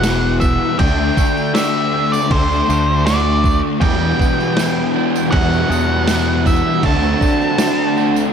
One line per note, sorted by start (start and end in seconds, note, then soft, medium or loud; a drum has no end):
0.00 0.57 E1 medium
0.00 0.77 E2 medium
0.00 0.76 E2 medium
0.00 0.78 B2 medium
0.00 0.76 B2 medium
0.00 0.78 E3 medium
0.00 0.41 B3 medium
0.00 1.93 D4 medium
0.00 0.79 F#4 medium
0.00 0.37 F#5 medium
0.00 snare loud
0.00 tambourine loud
0.00 crash medium
0.04 0.77 E3 medium
0.04 0.82 G3 medium
0.40 0.79 B3 medium
0.40 0.79 E5 medium
0.40 kick medium
0.40 tambourine medium
0.77 1.10 D2 medium
0.77 1.53 D3 loud
0.77 1.54 A3 medium
0.77 1.16 A3 medium
0.77 1.55 D4 loud
0.77 1.54 G5 loud
0.77 kick loud
0.77 tambourine soft
0.77 crash medium
1.17 2.68 A3 medium
1.17 kick medium
1.17 tambourine medium
1.37 tambourine soft
1.54 2.29 D3 medium
1.54 2.30 A3 medium
1.54 2.32 D4 medium
1.54 2.31 G4 medium
1.54 2.13 E5 medium
1.54 snare loud
1.54 tambourine loud
1.54 crash medium
1.94 3.82 C4 medium
2.12 2.31 D5 medium
2.12 tambourine medium
2.30 2.61 D2 loud
2.30 3.05 D3 loud
2.30 2.69 A3 loud
2.30 2.67 D4 loud
2.30 5.32 G4 medium
2.30 3.06 C5 medium
2.30 kick loud
2.30 crash medium
2.52 tambourine soft
2.68 3.60 D2 medium
2.68 3.05 A3 medium
2.68 3.06 A3 medium
2.68 3.08 D4 medium
2.68 tambourine medium
3.06 3.79 D3 medium
3.06 3.43 A3 medium
3.06 3.80 A3 medium
3.06 3.84 D4 medium
3.06 3.59 D5 medium
3.06 snare loud
3.06 tambourine medium
3.06 crash medium
3.44 3.82 A3 medium
3.44 kick loud
3.44 tambourine medium
3.81 5.30 E2 medium
3.81 4.12 E2 loud
3.81 4.55 E2 loud
3.81 5.31 B2 medium
3.81 4.57 B2 loud
3.81 4.96 E3 medium
3.81 4.58 E3 loud
3.81 6.08 G3 medium
3.81 4.96 G3 loud
3.81 4.94 B3 loud
3.81 4.93 E4 loud
3.81 5.31 G5 loud
3.81 kick loud
3.81 tambourine soft
3.81 crash medium
4.19 5.70 B3 medium
4.19 kick medium
4.19 tambourine medium
4.41 tambourine soft
4.57 5.31 E2 medium
4.57 5.32 B2 medium
4.57 5.33 E3 medium
4.57 snare loud
4.57 tambourine loud
4.57 crash medium
4.94 5.31 E3 medium
4.94 5.33 G3 medium
4.94 5.32 B3 medium
4.94 7.97 D4 medium
4.94 5.32 E4 medium
5.16 tambourine medium
5.31 6.45 E2 medium
5.31 6.06 E2 medium
5.31 5.63 E2 loud
5.31 6.46 B2 medium
5.31 5.70 B2 loud
5.31 6.06 E3 loud
5.31 5.69 E3 loud
5.31 6.08 G3 loud
5.31 6.08 B3 loud
5.31 6.09 E4 loud
5.31 6.84 F#4 medium
5.31 6.46 F#5 loud
5.31 kick loud
5.31 crash medium
5.53 tambourine soft
5.70 6.61 E2 medium
5.70 6.07 B2 medium
5.70 6.08 E3 medium
5.70 6.45 B3 medium
5.70 tambourine medium
6.07 6.81 E2 medium
6.07 6.81 B2 medium
6.07 6.46 E3 medium
6.07 6.82 E3 medium
6.07 6.46 G3 medium
6.07 6.87 G3 medium
6.07 6.44 B3 medium
6.07 6.44 E4 medium
6.07 snare loud
6.07 tambourine medium
6.07 crash medium
6.45 6.82 E3 medium
6.45 6.83 G3 medium
6.45 6.81 B3 medium
6.45 6.84 B3 medium
6.45 6.81 E4 medium
6.45 6.85 E5 medium
6.45 kick medium
6.45 tambourine medium
6.82 7.14 D2 loud
6.82 8.32 D3 medium
6.82 7.56 D3 medium
6.82 7.57 A3 loud
6.82 7.98 A3 loud
6.82 7.21 A3 medium
6.82 7.97 C4 medium
6.82 7.58 D4 loud
6.82 7.96 F#4 loud
6.82 8.33 A5 loud
6.82 kick loud
6.82 tambourine soft
6.82 crash medium
7.03 tambourine soft
7.21 8.33 A3 medium
7.21 kick medium
7.21 tambourine medium
7.41 tambourine soft
7.57 8.32 D3 medium
7.57 8.33 A3 medium
7.57 8.33 D4 medium
7.57 snare loud
7.57 tambourine loud
7.57 crash medium
7.79 tambourine soft
7.97 8.33 A3 medium
7.97 8.33 C4 medium
7.97 8.33 F#4 medium
7.97 tambourine soft
8.16 tambourine medium